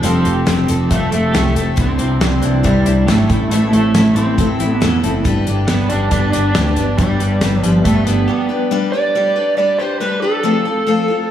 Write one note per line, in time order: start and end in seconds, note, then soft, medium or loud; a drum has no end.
0.03 0.23 F1 medium
0.03 0.25 F3 medium
0.03 0.25 G3 medium
0.03 0.26 C4 medium
0.03 0.94 C4 medium
0.03 0.25 G4 medium
0.03 0.24 A4 medium
0.03 closed hi-hat medium
0.25 0.46 F1 medium
0.25 0.45 C4 soft
0.25 0.46 G4 soft
0.25 0.47 A4 medium
0.25 closed hi-hat medium
0.46 0.68 F1 medium
0.46 0.68 G3 medium
0.46 0.69 C4 medium
0.46 0.69 G4 medium
0.46 0.68 A4 medium
0.46 snare loud
0.46 closed hi-hat medium
0.67 0.89 F1 medium
0.67 1.77 F3 medium
0.67 0.91 G4 medium
0.67 0.91 A4 medium
0.67 closed hi-hat medium
0.72 0.91 C4 soft
0.89 1.11 F1 loud
0.89 1.13 F3 medium
0.89 1.13 G3 medium
0.89 1.53 A3 medium
0.89 1.12 A3 medium
0.89 1.13 C4 medium
0.89 1.12 G4 medium
0.89 kick medium
0.89 closed hi-hat medium
0.93 1.11 A4 medium
1.10 1.32 F1 medium
1.10 1.53 A3 medium
1.10 2.20 C4 medium
1.10 1.35 G4 soft
1.10 1.34 A4 medium
1.10 closed hi-hat medium
1.15 1.34 C4 soft
1.34 1.54 C2 medium
1.34 1.56 G3 medium
1.34 1.56 C4 medium
1.34 1.57 G4 medium
1.34 1.55 A4 medium
1.34 snare loud
1.34 closed hi-hat medium
1.54 1.76 F1 medium
1.54 1.77 A3 medium
1.54 1.77 G4 soft
1.54 1.78 A4 medium
1.54 closed hi-hat medium
1.58 1.77 C4 soft
1.76 1.98 C2 medium
1.76 1.98 C3 medium
1.76 1.99 E3 medium
1.76 1.99 G3 medium
1.76 1.99 D4 medium
1.76 1.98 E4 medium
1.76 1.97 C5 medium
1.76 kick loud
1.76 closed hi-hat medium
1.81 2.69 C4 medium
1.98 2.19 C2 medium
1.98 2.19 G3 soft
1.98 2.20 D4 soft
1.98 2.21 E4 soft
1.98 3.06 G4 medium
1.98 2.20 C5 medium
1.98 closed hi-hat medium
2.21 2.41 C2 medium
2.21 2.42 G3 soft
2.21 2.43 D4 medium
2.21 2.42 E4 medium
2.21 2.40 C5 medium
2.21 snare loud
2.21 closed hi-hat medium
2.42 2.63 C2 medium
2.42 3.29 E3 medium
2.42 2.63 G3 soft
2.42 2.63 D4 soft
2.42 2.64 E4 medium
2.42 2.64 C5 medium
2.42 closed hi-hat medium
2.63 2.85 C2 medium
2.63 2.86 C3 medium
2.63 2.86 E3 medium
2.63 2.86 G3 medium
2.63 3.08 G3 medium
2.63 2.86 D4 medium
2.63 2.86 E4 medium
2.63 2.84 C5 medium
2.63 kick medium
2.63 closed hi-hat medium
2.85 3.06 C2 medium
2.85 3.06 G3 soft
2.85 3.07 D4 soft
2.85 3.08 E4 soft
2.85 3.07 C5 medium
2.85 closed hi-hat medium
3.07 3.28 G#1 medium
3.07 3.29 G3 medium
3.07 3.50 A3 medium
3.07 3.30 D4 medium
3.07 3.29 E4 medium
3.07 3.29 G4 medium
3.07 3.29 C5 medium
3.07 snare loud
3.07 closed hi-hat medium
3.29 3.50 A1 medium
3.29 3.49 A2 medium
3.29 3.51 A3 soft
3.29 3.52 C4 soft
3.29 3.51 E4 soft
3.29 3.51 A4 medium
3.29 kick medium
3.29 closed hi-hat medium
3.51 3.71 A1 medium
3.51 3.73 A2 medium
3.51 3.73 E3 medium
3.51 3.70 A3 medium
3.51 3.73 A3 medium
3.51 3.74 C4 medium
3.51 3.74 E4 medium
3.51 3.73 A4 medium
3.51 closed hi-hat medium
3.71 3.93 A1 medium
3.71 4.17 A3 medium
3.71 3.96 E4 medium
3.71 3.95 A4 medium
3.71 closed hi-hat medium
3.75 3.94 A3 soft
3.75 3.94 C4 medium
3.95 4.14 A1 medium
3.95 4.16 A3 soft
3.95 4.17 C4 medium
3.95 4.16 E4 medium
3.95 4.15 A4 medium
3.95 snare loud
3.95 closed hi-hat medium
4.15 4.36 A1 medium
4.15 5.25 E3 medium
4.15 4.37 A3 soft
4.15 4.72 C4 medium
4.15 4.38 C4 soft
4.15 4.38 E4 soft
4.15 4.38 A4 medium
4.15 closed hi-hat medium
4.38 4.58 A1 medium
4.38 4.60 A2 medium
4.38 4.60 E3 medium
4.38 4.59 A3 medium
4.38 4.59 C4 medium
4.38 4.59 E4 medium
4.38 4.58 A4 medium
4.38 kick medium
4.38 closed hi-hat medium
4.59 4.80 A1 medium
4.59 4.79 A3 soft
4.59 4.80 C4 soft
4.59 4.81 E4 soft
4.59 4.81 A4 medium
4.59 closed hi-hat medium
4.72 4.99 B3 medium
4.80 5.02 E2 medium
4.80 5.03 A3 medium
4.80 5.03 C4 medium
4.80 5.03 E4 medium
4.80 5.02 A4 medium
4.80 snare loud
4.80 closed hi-hat medium
5.03 5.23 F#1 medium
5.03 5.24 A3 soft
5.03 5.25 C4 soft
5.03 5.25 E4 medium
5.03 5.25 A4 medium
5.03 closed hi-hat medium
5.24 5.45 G1 medium
5.24 6.98 G2 medium
5.24 5.46 G3 medium
5.24 5.47 D4 medium
5.24 5.47 G4 loud
5.24 5.45 B4 loud
5.24 kick loud
5.24 closed hi-hat medium
5.47 5.67 G1 medium
5.47 5.68 D4 soft
5.47 5.69 G4 medium
5.47 5.68 B4 medium
5.47 closed hi-hat medium
5.67 5.89 G1 medium
5.67 5.90 G3 medium
5.67 5.90 B3 medium
5.67 5.90 D4 medium
5.67 5.90 G4 medium
5.67 5.89 B4 medium
5.67 snare loud
5.67 closed hi-hat medium
5.89 6.10 G1 medium
5.89 7.62 G3 medium
5.89 6.11 D4 loud
5.89 6.11 D4 soft
5.89 6.11 G4 soft
5.89 6.12 B4 soft
5.89 closed hi-hat medium
6.11 6.32 G1 loud
6.11 6.33 G3 medium
6.11 6.75 B3 medium
6.11 6.34 D4 medium
6.11 6.31 D4 medium
6.11 6.34 G4 medium
6.11 6.33 B4 loud
6.11 kick medium
6.11 closed hi-hat medium
6.32 6.54 G1 medium
6.32 7.00 D4 loud
6.32 6.55 G4 medium
6.32 6.56 B4 medium
6.32 closed hi-hat medium
6.37 6.55 D4 soft
6.54 6.76 D2 loud
6.54 6.76 G3 medium
6.54 6.77 D4 medium
6.54 6.78 G4 medium
6.54 6.77 B4 medium
6.54 snare loud
6.54 closed hi-hat medium
6.76 6.97 G1 medium
6.76 7.83 B3 medium
6.76 6.99 G4 medium
6.76 6.99 B4 medium
6.76 closed hi-hat medium
6.80 6.98 D4 soft
6.97 7.18 G1 medium
6.97 8.07 G2 medium
6.97 7.62 G3 medium
6.97 7.20 G3 medium
6.97 7.21 D4 medium
6.97 7.21 G4 medium
6.97 7.19 B4 medium
6.97 kick loud
6.97 closed hi-hat medium
7.20 7.40 G1 medium
7.20 7.42 D4 soft
7.20 7.42 G4 soft
7.20 7.42 B4 medium
7.20 closed hi-hat medium
7.41 7.62 G1 medium
7.41 7.63 G3 medium
7.41 7.64 D4 medium
7.41 7.64 G4 medium
7.41 7.62 B4 medium
7.41 snare loud
7.41 closed hi-hat medium
7.62 7.84 G1 medium
7.62 7.84 F3 medium
7.62 8.71 G3 medium
7.62 7.85 D4 soft
7.62 7.85 G4 soft
7.62 7.85 B4 medium
7.62 closed hi-hat medium
7.84 8.05 G1 medium
7.84 8.07 G3 medium
7.84 8.06 A3 medium
7.84 8.48 B3 medium
7.84 8.07 D4 medium
7.84 8.07 G4 medium
7.84 8.06 B4 medium
7.84 kick medium
7.84 closed hi-hat medium
8.06 8.27 G1 medium
8.06 8.47 B3 medium
8.06 8.27 D4 soft
8.06 8.28 G4 medium
8.06 8.28 B4 medium
8.06 closed hi-hat medium
8.28 8.50 G3 medium
8.28 8.50 D4 medium
8.28 8.49 G4 medium
8.28 8.48 B4 medium
8.49 8.72 B3 medium
8.49 8.70 D4 soft
8.49 8.71 G4 soft
8.49 8.71 B4 soft
8.71 8.93 G3 medium
8.71 8.93 D4 loud
8.71 8.93 G4 loud
8.71 8.92 B4 loud
8.92 9.14 D4 soft
8.92 9.15 G4 medium
8.92 9.15 B4 medium
8.92 9.57 D5 loud
9.15 9.37 G3 medium
9.15 9.36 D4 medium
9.15 9.35 G4 medium
9.15 9.34 B4 medium
9.36 9.57 D4 soft
9.36 9.57 G4 soft
9.36 9.58 B4 medium
9.57 9.79 G3 medium
9.57 9.80 D4 medium
9.57 9.80 G4 medium
9.57 9.78 B4 medium
9.57 9.80 D5 loud
9.79 10.00 D4 soft
9.79 10.01 G4 medium
9.79 10.01 B4 medium
9.79 9.99 C5 medium
10.00 10.23 G3 medium
10.00 10.23 D4 medium
10.00 10.22 G4 medium
10.00 10.22 B4 medium
10.00 10.21 B4 medium
10.22 10.44 D4 soft
10.22 10.44 G4 medium
10.22 11.31 A4 medium
10.22 10.44 B4 medium
10.43 10.66 F3 medium
10.43 10.66 A3 medium
10.43 10.66 C4 medium
10.43 10.65 F4 loud
10.43 10.64 A4 medium
10.65 10.87 C4 medium
10.65 10.87 F4 medium
10.65 10.87 A4 medium
10.87 11.09 F3 medium
10.87 11.09 A3 medium
10.87 11.10 C4 medium
10.87 11.09 F4 medium
10.87 11.07 A4 loud
11.08 11.31 C4 soft
11.08 11.31 F4 medium
11.08 11.30 A4 medium